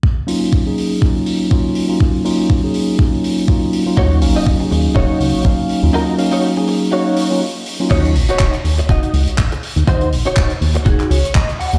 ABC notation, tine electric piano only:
X:1
M:4/4
L:1/16
Q:"Swing 16ths" 1/4=122
K:Ebm
V:1 name="Tine electric piano"
z2 [G,B,DEF]3 [G,B,DEA]3 [G,B,DEF]4 [G,B,DEF]3 [G,B,DEF]- | [G,B,DEF]2 [G,B,DEF]3 [G,B,DEA]3 [G,B,DEF]4 [G,B,DEF]3 [G,B,DEF]- | [G,B,DEF]2 [G,B,DEf]3 [G,B,DEA]3 [G,B,DEf]4 [G,B,DEf]3 [G,B,DEF]- | [G,B,DEF]2 [G,B,DEf]3 [G,B,DEA]3 [G,B,DEf]3 [G,B,DEF] z3 [G,B,DEF]- |
[G,B,DEF]2 z12 z2 | z16 |]